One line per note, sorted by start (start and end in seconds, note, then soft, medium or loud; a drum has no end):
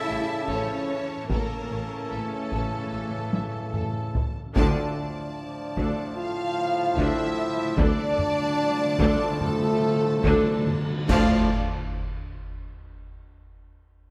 0.00 1.13 C#3 medium
0.00 0.48 E4 medium
0.00 1.13 E4 medium
0.00 0.97 A4 medium
0.00 0.49 E5 medium
0.00 1.25 A5 medium
0.08 0.24 A1 soft
0.08 0.17 A1 soft
0.08 0.15 A2 soft
0.08 0.48 G3 medium
0.08 0.17 E5 medium
0.25 0.32 A2 soft
0.33 0.40 A2 soft
0.41 0.48 A2 soft
0.48 0.64 A1 medium
0.48 0.56 A1 medium
0.48 0.89 F3 medium
0.48 1.28 C#4 medium
0.48 1.11 C#4 medium
0.48 0.86 A4 medium
0.48 1.30 C#5 medium
0.48 taiko medium
0.56 0.62 A2 soft
0.63 0.70 A2 soft
0.71 0.77 A2 soft
0.78 0.84 A2 soft
0.85 0.92 A2 soft
0.85 1.30 E3 soft
0.93 1.00 A2 soft
1.01 1.08 A2 soft
1.09 1.15 A2 soft
1.16 1.22 A2 soft
1.24 1.29 A2 soft
1.28 1.46 A1 medium
1.28 1.38 A1 soft
1.28 1.37 A2 soft
1.28 4.20 C#3 medium
1.28 4.20 E3 medium
1.28 2.09 A#3 medium
1.28 2.11 A#3 medium
1.28 4.16 C#4 medium
1.28 4.19 A4 soft
1.28 1.68 A4 medium
1.28 2.09 A#4 medium
1.28 4.33 A5 soft
1.28 taiko medium
1.46 1.54 A2 soft
1.55 1.60 A2 soft
1.61 1.68 A2 soft
1.69 1.79 A1 soft
1.69 1.87 A1 soft
1.69 1.76 A2 soft
1.69 1.78 C#5 soft
1.77 1.84 A2 soft
1.85 1.92 A2 soft
1.93 2.00 A2 soft
2.01 2.07 A2 soft
2.09 2.20 A1 soft
2.09 2.28 A1 soft
2.09 2.14 A2 soft
2.09 4.14 A3 soft
2.09 4.15 A3 soft
2.09 4.16 A4 soft
2.09 2.19 E5 soft
2.16 2.22 A2 soft
2.24 2.31 A2 soft
2.33 2.39 A2 soft
2.40 2.46 A2 soft
2.48 2.54 A2 medium
2.52 2.61 A1 soft
2.52 2.70 A1 soft
2.52 2.61 A2 medium
2.52 2.90 A4 soft
2.52 taiko medium
2.62 2.69 A2 medium
2.70 2.76 A2 medium
2.77 2.84 A2 medium
2.85 2.92 A2 medium
2.93 3.01 A1 soft
2.93 3.10 A1 soft
2.93 3.00 A2 medium
2.93 3.02 C#5 soft
3.01 3.08 A2 medium
3.09 3.15 A2 medium
3.16 3.23 A2 medium
3.24 3.30 A2 medium
3.32 3.41 A1 soft
3.32 3.51 A1 soft
3.32 3.37 A2 medium
3.32 3.43 E5 soft
3.32 taiko high medium
3.38 3.46 A2 medium
3.47 3.53 A2 medium
3.54 3.60 A2 medium
3.62 3.67 A2 medium
3.68 3.75 A2 medium
3.74 3.82 A1 soft
3.74 3.92 A1 soft
3.74 3.82 A2 medium
3.74 4.13 A4 soft
3.74 taiko low-mid medium
3.83 3.89 A2 medium
3.91 3.97 A2 medium
3.98 4.06 A2 medium
4.07 4.13 A2 medium
4.14 4.21 A2 medium
4.14 taiko low medium
4.22 4.28 A2 medium
4.29 4.35 A2 medium
4.36 4.43 A2 medium
4.44 4.52 A2 medium
4.54 4.94 D2 medium
4.54 7.73 A2 medium
4.54 4.93 D3 medium
4.54 7.73 F3 medium
4.54 6.12 D4 medium
4.54 4.93 D4 medium
4.54 4.93 A4 medium
4.54 6.13 D5 medium
4.54 7.74 A5 medium
4.54 taiko loud
4.85 4.92 D3 soft
4.93 5.00 D3 soft
5.01 5.07 D3 soft
5.17 5.24 D3 soft
5.25 5.32 D3 soft
5.33 5.39 D3 soft
5.40 5.46 D3 soft
5.47 5.54 D3 soft
5.55 5.60 D3 soft
5.62 5.68 D3 soft
5.69 5.75 D3 soft
5.76 5.85 D2 medium
5.76 5.93 D2 medium
5.76 5.81 D3 soft
5.76 5.84 D3 medium
5.76 6.14 D4 medium
5.76 6.14 A4 medium
5.76 taiko medium
5.83 5.90 D3 soft
5.91 5.97 D3 soft
5.99 6.05 D3 soft
6.06 6.13 D3 soft
6.15 6.19 D3 soft
6.15 6.97 F4 medium
6.15 6.97 F5 medium
6.21 6.28 D3 soft
6.29 6.34 D3 soft
6.36 6.43 D3 soft
6.44 6.51 D3 soft
6.52 6.57 D3 soft
6.59 6.65 D3 soft
6.66 6.72 D3 soft
6.74 6.80 D3 soft
6.81 6.87 D3 soft
6.88 6.96 D3 soft
6.96 7.04 D2 medium
6.96 7.14 D2 medium
6.96 7.05 D3 medium
6.96 7.04 D3 soft
6.96 7.35 D4 medium
6.96 7.77 E4 loud
6.96 7.34 A4 medium
6.96 7.78 E5 medium
6.96 taiko medium
7.19 7.24 D3 soft
7.25 7.32 D3 soft
7.42 7.48 D3 medium
7.49 7.56 D3 medium
7.57 7.63 D3 medium
7.64 7.71 D3 medium
7.72 7.78 D3 medium
7.76 7.93 D2 medium
7.76 7.86 D2 medium
7.76 10.71 A2 medium
7.76 7.84 D3 medium
7.76 7.86 D3 medium
7.76 10.71 F3 medium
7.76 9.40 D4 loud
7.76 8.16 D4 medium
7.76 8.16 A4 medium
7.76 9.41 D5 loud
7.76 10.84 A5 medium
7.76 taiko loud
7.95 8.01 D3 medium
8.02 8.08 D3 medium
8.09 8.16 D3 medium
8.18 8.24 D3 medium
8.18 taiko low-mid soft
8.25 8.31 D3 medium
8.33 8.39 D3 medium
8.41 8.46 D3 medium
8.47 8.53 D3 medium
8.55 8.61 D3 medium
8.63 8.69 D3 medium
8.70 8.76 D3 medium
8.78 8.84 D3 medium
8.85 8.93 D3 medium
8.94 9.00 D3 medium
8.99 9.07 D2 loud
8.99 9.16 D2 medium
8.99 9.07 D3 medium
8.99 9.39 D4 medium
8.99 9.39 A4 medium
8.99 taiko medium
9.08 9.14 D3 medium
9.16 9.23 D3 medium
9.24 9.30 D3 medium
9.31 9.39 D3 medium
9.40 9.47 D3 medium
9.40 10.64 A3 loud
9.40 10.65 A4 medium
9.40 taiko low-mid medium
9.48 9.55 D3 medium
9.57 9.63 D3 medium
9.64 9.71 D3 medium
9.73 9.79 D3 medium
9.80 9.87 D3 medium
9.88 9.94 D3 medium
9.95 10.02 D3 medium
10.03 10.10 D3 medium
10.11 10.17 D3 medium
10.19 10.26 D3 medium
10.24 10.41 D2 loud
10.24 10.32 D2 medium
10.24 10.32 D3 medium
10.24 10.33 D3 loud
10.24 10.64 D4 loud
10.24 10.64 A4 medium
10.24 taiko medium
10.34 10.41 D3 loud
10.42 10.50 D3 loud
10.51 10.58 D3 medium
10.59 10.66 D3 loud
10.67 10.73 D3 loud
10.67 taiko low-mid medium
10.74 10.81 D3 loud
10.82 10.89 D3 loud
10.91 10.96 D3 loud
10.97 11.05 D3 loud
11.08 11.56 D2 medium
11.08 11.48 D2 medium
11.08 11.56 D2 medium
11.08 11.48 A2 medium
11.08 11.48 D3 medium
11.08 11.47 F3 medium
11.08 11.48 F3 medium
11.08 11.57 F4 medium
11.08 11.57 D5 medium
11.08 11.56 F5 medium
11.08 11.57 A5 medium
11.08 concert bass drum medium
11.08 taiko loud
11.08 crash medium